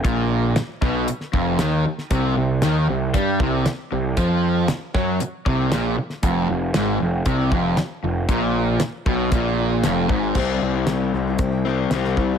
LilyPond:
<<
  \new Staff \with { instrumentName = "Steel-string acoustic guitar" } { \time 4/4 \key f \major \tempo 4 = 116 r1 | r1 | r1 | r1 |
r1 | \key c \major <c g c' e' g'>8. <c' e' g'>16 <c g c' e' g'>8 <g c' e' g'>16 <c' e' g'>16 <c g c' e' g'>16 <c' e' g'>16 <g c' e' g'>4 <g c' e' g'>16 <c' e' g'>16 | }
  \new Staff \with { instrumentName = "Overdriven electric guitar" } { \clef bass \time 4/4 \key f \major bes,4 r8 b,8 r8 f,8 ees8 r8 | c8 c8 ees8 c8 g8 c8 r8 c8 | f4 r8 fis8 r8 c8 bes,8 r8 | f,8 f,8 aes,8 f,8 c8 f,8 r8 f,8 |
bes,4 r8 b,8 bes,4 f,8 aes,8 | \key c \major <c g c'>2~ <c g c'>8 <c g c'>8 <c g c'>4 | }
  \new Staff \with { instrumentName = "Distorted electric guitar" } { \clef bass \time 4/4 \key f \major bes,4 r8 b,8 r8 f,8 ees8 r8 | c8 c8 ees8 c8 g8 c8 r8 c8 | f4 r8 fis8 r8 c8 bes,8 r8 | f,8 f,8 aes,8 f,8 c8 f,8 r8 f,8 |
bes,4 r8 b,8 bes,4 f,8 aes,8 | \key c \major r1 | }
  \new Staff \with { instrumentName = "Picked electric bass" } { \clef bass \time 4/4 \key f \major bes,,4 r8 b,,8 r8 f,,8 ees,8 r8 | c,8 c,8 ees,8 c,8 g,8 c,8 r8 c,8 | f,4 r8 fis,8 r8 c,8 bes,,8 r8 | f,,8 f,,8 aes,,8 f,,8 c,8 f,,8 r8 f,,8 |
bes,,4 r8 b,,8 bes,,4 f,,8 aes,,8 | \key c \major c,8 c,8 c,8 c,8 c,4 c,8 c,8 | }
  \new DrumStaff \with { instrumentName = "Drums" } \drummode { \time 4/4 <hh bd>4 <hh sn>8 <bd sn>8 hh16 sn16 bd8 <hh sn>8. sn16 | <hh bd>4 <hh sn>4 <hh bd>8 bd8 <hh sn>4 | <hh bd>4 <hh sn>8 <bd sn>8 hh8 bd8 <hh sn>8. sn16 | <hh bd>4 <hh sn>4 <hh bd>8 bd8 <hh sn>4 |
<hh bd>4 <hh sn>8 bd8 <hh bd>4 <hh sn>8 bd8 | <cymc bd>4 <hh sn>4 <hh bd>4 <hh sn>16 sn16 bd8 | }
>>